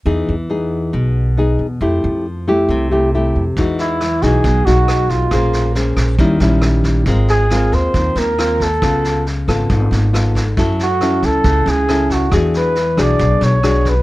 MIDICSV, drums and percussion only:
0, 0, Header, 1, 2, 480
1, 0, Start_track
1, 0, Tempo, 438276
1, 62, Time_signature, 4, 2, 24, 8
1, 15361, End_track
2, 0, Start_track
2, 0, Title_t, "Drums"
2, 3905, Note_on_c, 9, 38, 22
2, 3907, Note_on_c, 9, 36, 49
2, 4014, Note_off_c, 9, 38, 0
2, 4016, Note_off_c, 9, 36, 0
2, 4147, Note_on_c, 9, 38, 20
2, 4256, Note_off_c, 9, 38, 0
2, 4388, Note_on_c, 9, 37, 53
2, 4388, Note_on_c, 9, 38, 22
2, 4498, Note_off_c, 9, 37, 0
2, 4498, Note_off_c, 9, 38, 0
2, 4622, Note_on_c, 9, 38, 22
2, 4624, Note_on_c, 9, 36, 21
2, 4732, Note_off_c, 9, 38, 0
2, 4733, Note_off_c, 9, 36, 0
2, 4865, Note_on_c, 9, 36, 55
2, 4865, Note_on_c, 9, 38, 20
2, 4974, Note_off_c, 9, 36, 0
2, 4975, Note_off_c, 9, 38, 0
2, 5110, Note_on_c, 9, 38, 24
2, 5219, Note_off_c, 9, 38, 0
2, 5346, Note_on_c, 9, 37, 61
2, 5346, Note_on_c, 9, 38, 23
2, 5455, Note_off_c, 9, 37, 0
2, 5455, Note_off_c, 9, 38, 0
2, 5582, Note_on_c, 9, 36, 27
2, 5586, Note_on_c, 9, 38, 25
2, 5692, Note_off_c, 9, 36, 0
2, 5696, Note_off_c, 9, 38, 0
2, 5816, Note_on_c, 9, 37, 56
2, 5816, Note_on_c, 9, 38, 21
2, 5819, Note_on_c, 9, 36, 48
2, 5925, Note_off_c, 9, 37, 0
2, 5925, Note_off_c, 9, 38, 0
2, 5929, Note_off_c, 9, 36, 0
2, 6058, Note_on_c, 9, 38, 21
2, 6167, Note_off_c, 9, 38, 0
2, 6298, Note_on_c, 9, 38, 21
2, 6408, Note_off_c, 9, 38, 0
2, 6535, Note_on_c, 9, 36, 23
2, 6535, Note_on_c, 9, 37, 55
2, 6535, Note_on_c, 9, 38, 25
2, 6644, Note_off_c, 9, 37, 0
2, 6644, Note_off_c, 9, 38, 0
2, 6645, Note_off_c, 9, 36, 0
2, 6775, Note_on_c, 9, 36, 55
2, 6775, Note_on_c, 9, 38, 19
2, 6884, Note_off_c, 9, 36, 0
2, 6884, Note_off_c, 9, 38, 0
2, 7011, Note_on_c, 9, 38, 26
2, 7120, Note_off_c, 9, 38, 0
2, 7245, Note_on_c, 9, 37, 58
2, 7245, Note_on_c, 9, 38, 25
2, 7354, Note_off_c, 9, 37, 0
2, 7354, Note_off_c, 9, 38, 0
2, 7491, Note_on_c, 9, 36, 28
2, 7491, Note_on_c, 9, 38, 26
2, 7600, Note_off_c, 9, 36, 0
2, 7601, Note_off_c, 9, 38, 0
2, 7728, Note_on_c, 9, 38, 24
2, 7731, Note_on_c, 9, 36, 53
2, 7838, Note_off_c, 9, 38, 0
2, 7841, Note_off_c, 9, 36, 0
2, 7975, Note_on_c, 9, 38, 23
2, 8085, Note_off_c, 9, 38, 0
2, 8217, Note_on_c, 9, 37, 48
2, 8217, Note_on_c, 9, 38, 21
2, 8327, Note_off_c, 9, 37, 0
2, 8327, Note_off_c, 9, 38, 0
2, 8456, Note_on_c, 9, 36, 20
2, 8461, Note_on_c, 9, 38, 22
2, 8566, Note_off_c, 9, 36, 0
2, 8571, Note_off_c, 9, 38, 0
2, 8698, Note_on_c, 9, 36, 52
2, 8703, Note_on_c, 9, 38, 21
2, 8807, Note_off_c, 9, 36, 0
2, 8813, Note_off_c, 9, 38, 0
2, 8940, Note_on_c, 9, 38, 24
2, 9049, Note_off_c, 9, 38, 0
2, 9184, Note_on_c, 9, 37, 59
2, 9184, Note_on_c, 9, 38, 23
2, 9294, Note_off_c, 9, 37, 0
2, 9294, Note_off_c, 9, 38, 0
2, 9420, Note_on_c, 9, 36, 28
2, 9426, Note_on_c, 9, 38, 25
2, 9530, Note_off_c, 9, 36, 0
2, 9536, Note_off_c, 9, 38, 0
2, 9660, Note_on_c, 9, 36, 56
2, 9660, Note_on_c, 9, 37, 51
2, 9660, Note_on_c, 9, 38, 19
2, 9770, Note_off_c, 9, 36, 0
2, 9770, Note_off_c, 9, 37, 0
2, 9770, Note_off_c, 9, 38, 0
2, 9904, Note_on_c, 9, 38, 23
2, 10013, Note_off_c, 9, 38, 0
2, 10147, Note_on_c, 9, 38, 20
2, 10257, Note_off_c, 9, 38, 0
2, 10381, Note_on_c, 9, 36, 20
2, 10387, Note_on_c, 9, 37, 55
2, 10387, Note_on_c, 9, 38, 23
2, 10490, Note_off_c, 9, 36, 0
2, 10496, Note_off_c, 9, 37, 0
2, 10496, Note_off_c, 9, 38, 0
2, 10622, Note_on_c, 9, 36, 57
2, 10623, Note_on_c, 9, 38, 23
2, 10731, Note_off_c, 9, 36, 0
2, 10733, Note_off_c, 9, 38, 0
2, 10868, Note_on_c, 9, 38, 27
2, 10977, Note_off_c, 9, 38, 0
2, 11108, Note_on_c, 9, 37, 59
2, 11108, Note_on_c, 9, 38, 23
2, 11217, Note_off_c, 9, 37, 0
2, 11217, Note_off_c, 9, 38, 0
2, 11339, Note_on_c, 9, 36, 26
2, 11344, Note_on_c, 9, 38, 27
2, 11449, Note_off_c, 9, 36, 0
2, 11454, Note_off_c, 9, 38, 0
2, 11579, Note_on_c, 9, 36, 54
2, 11583, Note_on_c, 9, 38, 21
2, 11689, Note_off_c, 9, 36, 0
2, 11693, Note_off_c, 9, 38, 0
2, 11821, Note_on_c, 9, 38, 20
2, 11931, Note_off_c, 9, 38, 0
2, 12056, Note_on_c, 9, 37, 50
2, 12056, Note_on_c, 9, 38, 20
2, 12165, Note_off_c, 9, 37, 0
2, 12165, Note_off_c, 9, 38, 0
2, 12293, Note_on_c, 9, 38, 22
2, 12295, Note_on_c, 9, 36, 22
2, 12403, Note_off_c, 9, 38, 0
2, 12404, Note_off_c, 9, 36, 0
2, 12531, Note_on_c, 9, 38, 24
2, 12533, Note_on_c, 9, 36, 53
2, 12640, Note_off_c, 9, 38, 0
2, 12642, Note_off_c, 9, 36, 0
2, 12780, Note_on_c, 9, 38, 27
2, 12889, Note_off_c, 9, 38, 0
2, 13016, Note_on_c, 9, 37, 61
2, 13016, Note_on_c, 9, 38, 22
2, 13126, Note_off_c, 9, 37, 0
2, 13126, Note_off_c, 9, 38, 0
2, 13252, Note_on_c, 9, 36, 25
2, 13256, Note_on_c, 9, 38, 26
2, 13362, Note_off_c, 9, 36, 0
2, 13366, Note_off_c, 9, 38, 0
2, 13487, Note_on_c, 9, 37, 50
2, 13487, Note_on_c, 9, 38, 20
2, 13490, Note_on_c, 9, 36, 51
2, 13596, Note_off_c, 9, 37, 0
2, 13596, Note_off_c, 9, 38, 0
2, 13599, Note_off_c, 9, 36, 0
2, 13732, Note_on_c, 9, 38, 21
2, 13841, Note_off_c, 9, 38, 0
2, 13969, Note_on_c, 9, 38, 23
2, 14078, Note_off_c, 9, 38, 0
2, 14210, Note_on_c, 9, 36, 25
2, 14210, Note_on_c, 9, 37, 52
2, 14210, Note_on_c, 9, 38, 21
2, 14319, Note_off_c, 9, 36, 0
2, 14320, Note_off_c, 9, 37, 0
2, 14320, Note_off_c, 9, 38, 0
2, 14452, Note_on_c, 9, 36, 55
2, 14453, Note_on_c, 9, 38, 21
2, 14561, Note_off_c, 9, 36, 0
2, 14563, Note_off_c, 9, 38, 0
2, 14695, Note_on_c, 9, 38, 25
2, 14804, Note_off_c, 9, 38, 0
2, 14930, Note_on_c, 9, 37, 59
2, 14930, Note_on_c, 9, 38, 26
2, 15040, Note_off_c, 9, 37, 0
2, 15040, Note_off_c, 9, 38, 0
2, 15171, Note_on_c, 9, 36, 26
2, 15172, Note_on_c, 9, 38, 25
2, 15281, Note_off_c, 9, 36, 0
2, 15282, Note_off_c, 9, 38, 0
2, 15361, End_track
0, 0, End_of_file